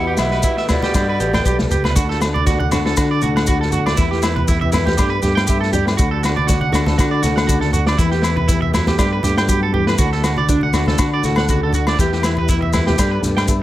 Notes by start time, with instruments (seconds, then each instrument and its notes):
Already playing: fingered electric bass E2, tenor saxophone B2, steel-string acoustic guitar E3 G3 G4 B4 E5, tonewheel organ E4 G4 B4, flute F#5
0.07 clean electric guitar G4
0.17 fingered electric bass B1, tenor saxophone B2, clean electric guitar E4, steel-string acoustic guitar G4, flute E5, snare, low agogo, maracas
0.31 clean electric guitar B4, snare
0.43 clean electric guitar E4, steel-string acoustic guitar B4, kick, maracas
0.57 clean electric guitar E5, snare
0.68 tenor saxophone B2, clean electric guitar E4, steel-string acoustic guitar G4, flute D5, snare, high conga, low conga, low agogo, maracas
0.82 clean electric guitar G4, snare, high conga
0.92 fingered electric bass G2, steel-string acoustic guitar G3, clean electric guitar G4, kick, snare, low agogo, maracas
0.96 tonewheel organ A4
1.09 clean electric guitar B4
1.20 fingered electric bass A1, clean electric guitar G4, steel-string acoustic guitar B4, maracas
1.33 clean electric guitar G5, snare, low conga, low agogo
1.44 fingered electric bass B1, clean electric guitar G4, steel-string acoustic guitar B4, kick, maracas
1.59 snare, high conga
1.70 fingered electric bass C#2, clean electric guitar G4, steel-string acoustic guitar B4, low conga, maracas
1.84 clean electric guitar B4, snare, high conga, low agogo
1.95 fingered electric bass D2, tonewheel organ D4 F#4 A4, clean electric guitar F#4, steel-string acoustic guitar A4, muted steel-string acoustic guitar stroke, kick, snare, maracas
2.09 clean electric guitar A4, snare
2.20 muted clean electric guitar stroke, snare, low agogo, maracas
2.34 clean electric guitar D5, high conga
2.46 clean electric guitar F#4, steel-string acoustic guitar D5, kick, snare, maracas
2.59 clean electric guitar F#5, high conga
2.71 steel-string acoustic guitar D4 A4, clean electric guitar F#4, snare, low conga, low agogo, maracas
2.85 clean electric guitar A4, snare
2.96 fingered electric bass D3, clean electric guitar F#4, muted steel-string acoustic guitar stroke, kick, snare, low agogo, maracas
3.11 clean electric guitar D5
3.21 fingered electric bass D2, steel-string acoustic guitar A2 A4, clean electric guitar F#4, high conga, maracas
3.36 clean electric guitar F#5, snare, low agogo
3.46 clean electric guitar F#4, steel-string acoustic guitar F#4, kick, maracas
3.61 clean electric guitar A4, snare
3.72 clean electric guitar F#4, steel-string acoustic guitar A4, low conga, maracas
3.86 clean electric guitar D5, snare, low agogo
3.96 fingered electric bass E2, steel-string acoustic guitar E3 B4, tonewheel organ B3 E4 G4, clean electric guitar E4, kick, snare, maracas
4.11 clean electric guitar G4, snare
4.22 clean electric guitar E4, snare, low agogo, maracas
4.36 clean electric guitar B4, high conga
4.48 clean electric guitar E4, steel-string acoustic guitar E5, kick, snare, maracas
4.61 clean electric guitar E5, high conga
4.72 steel-string acoustic guitar G3 B4, clean electric guitar E4, snare, low conga, low agogo, maracas
4.86 clean electric guitar G4, snare, high conga
4.97 fingered electric bass G2, steel-string acoustic guitar G3 D5, tonewheel organ A3 B3, clean electric guitar G4, kick, snare, low agogo, maracas
5.10 clean electric guitar B4
5.22 fingered electric bass G2, clean electric guitar G4, snare, high conga, maracas
5.35 clean electric guitar G5, snare, low agogo
5.47 clean electric guitar G4, steel-string acoustic guitar E5, kick, maracas
5.60 clean electric guitar A4, snare
5.73 clean electric guitar G4, steel-string acoustic guitar G4 D5, low conga, maracas
5.85 muted clean electric guitar stroke, snare, low agogo
5.97 fingered electric bass D2, steel-string acoustic guitar D3 A4, tonewheel organ D4 F#4, clean electric guitar F#4, kick, maracas
6.11 clean electric guitar A4
6.23 clean electric guitar F#4, snare, low agogo, maracas
6.36 clean electric guitar D5, high conga
6.47 clean electric guitar F#4, steel-string acoustic guitar D5, kick, snare, maracas
6.61 clean electric guitar F#5, high conga
6.72 steel-string acoustic guitar D4 A4, clean electric guitar F#4, snare, low conga, low agogo, maracas
6.86 clean electric guitar A4, snare, high conga
6.98 fingered electric bass D3, clean electric guitar F#4, steel-string acoustic guitar F#4, kick, snare, low agogo, maracas
7.11 clean electric guitar D5
7.23 fingered electric bass D2, steel-string acoustic guitar A2 A4, clean electric guitar F#4, snare, high conga, maracas
7.36 clean electric guitar F#5, snare, low agogo
7.47 steel-string acoustic guitar C#3, clean electric guitar F#4, kick, maracas
7.61 clean electric guitar A4, snare
7.73 clean electric guitar F#4, muted steel-string acoustic guitar stroke, low conga, maracas
7.86 clean electric guitar D5, snare, low agogo
7.98 fingered electric bass E2, steel-string acoustic guitar E3 B4, tonewheel organ B3 E4 G4, clean electric guitar E4, kick, snare, maracas
8.11 clean electric guitar G4, snare
8.22 clean electric guitar E4, snare, low agogo, maracas
8.36 clean electric guitar B4, high conga
8.48 steel-string acoustic guitar E3, clean electric guitar E4, kick, snare, maracas
8.62 clean electric guitar E5, high conga
8.73 steel-string acoustic guitar F#3, clean electric guitar E4, snare, low conga, low agogo, maracas
8.87 clean electric guitar G4, snare, high conga
8.98 fingered electric bass G2, steel-string acoustic guitar G3 D5, tonewheel organ A3, clean electric guitar G4, kick, snare, low agogo, maracas
9.13 clean electric guitar B4
9.23 fingered electric bass G2, clean electric guitar G4, snare, high conga, maracas
9.37 clean electric guitar G5, snare, low agogo
9.48 steel-string acoustic guitar F#3, clean electric guitar G4, kick, maracas
9.63 clean electric guitar A4
9.74 steel-string acoustic guitar E3, clean electric guitar G4, low conga
9.87 clean electric guitar B4, snare, low agogo
9.97 fingered electric bass D2, steel-string acoustic guitar D3 A4, tonewheel organ A3 D4 F#4, clean electric guitar F#4, kick, snare, maracas
10.12 clean electric guitar A4, snare
10.24 clean electric guitar F#4, snare, low agogo, maracas
10.37 clean electric guitar D5, high conga
10.49 clean electric guitar D4, steel-string acoustic guitar D5, kick, maracas
10.61 clean electric guitar F#5, high conga
10.73 steel-string acoustic guitar D4 A4, clean electric guitar F#4, snare, low conga, low agogo, maracas
10.86 clean electric guitar A4, snare, high conga
10.98 fingered electric bass D3, clean electric guitar F#4, steel-string acoustic guitar F#4, kick, snare, low agogo, maracas
11.14 clean electric guitar D5
11.23 fingered electric bass D2, steel-string acoustic guitar A2 A4, clean electric guitar F#4, snare, high conga, maracas
11.36 clean electric guitar F#5, snare, low agogo
11.49 steel-string acoustic guitar C#3, clean electric guitar F#4, kick, maracas
11.63 clean electric guitar A4
11.73 steel-string acoustic guitar D3, clean electric guitar F#4, low conga, maracas
11.87 clean electric guitar D5, snare, low agogo
11.98 fingered electric bass E2, steel-string acoustic guitar E3 G3 G4 B4 E5, tonewheel organ B3 E4 G4, clean electric guitar G4, kick, snare, maracas
12.12 clean electric guitar G4, snare
12.23 clean electric guitar E4, snare, low agogo, maracas
12.37 clean electric guitar B4, high conga
12.48 clean electric guitar E4, steel-string acoustic guitar E5, kick, snare, maracas
12.62 clean electric guitar E5, high conga
12.73 steel-string acoustic guitar G3 B4, clean electric guitar E4, snare, low conga, low agogo, maracas
12.87 clean electric guitar G4, snare, high conga
12.98 fingered electric bass G2, steel-string acoustic guitar G3 D5, clean electric guitar G4, tonewheel organ A4, kick, snare, low agogo, maracas
13.11 clean electric guitar B4
13.22 fingered electric bass G2, snare, high conga, maracas
13.37 clean electric guitar G5, snare, low agogo
13.48 steel-string acoustic guitar E5, kick, maracas